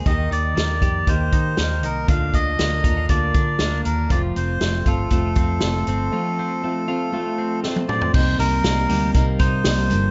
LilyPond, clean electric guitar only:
\new Staff \with { instrumentName = "Clean electric guitar" } { \time 4/4 \key c \dorian \tempo 4 = 119 ees8 ees'8 bes8 g'8 bes8 ees'8 bes8 ees'8 | d8 d'8 bes8 ees'16 f'16 bes8 d'8 bes8 d'8 | f8 c'8 a8 f'8 a8 c'8 a8 c'8 | f8 c'8 a8 f'8 a8 c'8 a8 c'8 |
c8 g8 bes8 g8 bes8 ees'8 g8 g,8 | }